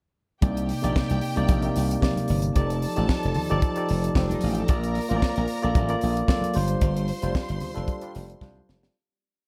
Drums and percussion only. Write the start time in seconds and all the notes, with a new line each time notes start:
0.42 kick, closed hi-hat, muted conga
0.57 closed hi-hat
0.69 open hi-hat
0.84 closed hi-hat
0.96 kick, snare, high conga
1.10 closed hi-hat
1.21 open hi-hat
1.36 closed hi-hat
1.49 kick, closed hi-hat, muted conga
1.62 closed hi-hat
1.76 open hi-hat
1.91 closed hi-hat
2.02 kick, snare, high conga
2.16 closed hi-hat, high conga
2.28 open hi-hat
2.42 closed hi-hat
2.56 kick, closed hi-hat, muted conga
2.70 closed hi-hat
2.82 open hi-hat
2.96 closed hi-hat
3.09 kick, snare, high conga
3.23 closed hi-hat
3.34 open hi-hat, low conga
3.49 closed hi-hat
3.62 kick, closed hi-hat, muted conga
3.76 closed hi-hat
3.89 open hi-hat
4.04 closed hi-hat
4.15 kick, snare, high conga
4.30 closed hi-hat, high conga
4.41 open hi-hat
4.55 closed hi-hat
4.68 kick, closed hi-hat, muted conga
4.84 closed hi-hat
4.95 open hi-hat, muted conga
5.09 closed hi-hat
5.22 kick, snare, high conga
5.36 closed hi-hat
5.48 open hi-hat
5.62 closed hi-hat
5.75 kick, closed hi-hat, muted conga
5.89 closed hi-hat
6.01 open hi-hat
6.17 closed hi-hat
6.28 kick, snare, high conga
6.41 closed hi-hat, high conga
6.54 open hi-hat
6.68 closed hi-hat
6.81 kick, closed hi-hat, muted conga
6.97 closed hi-hat
7.08 open hi-hat, muted conga
7.22 closed hi-hat
7.35 kick, snare, high conga
7.49 closed hi-hat
7.60 open hi-hat, low conga
7.75 closed hi-hat
7.88 kick, closed hi-hat, muted conga
8.01 closed hi-hat
8.15 open hi-hat
8.30 closed hi-hat
8.41 kick, snare, high conga
8.55 high conga
8.69 snare
8.83 snare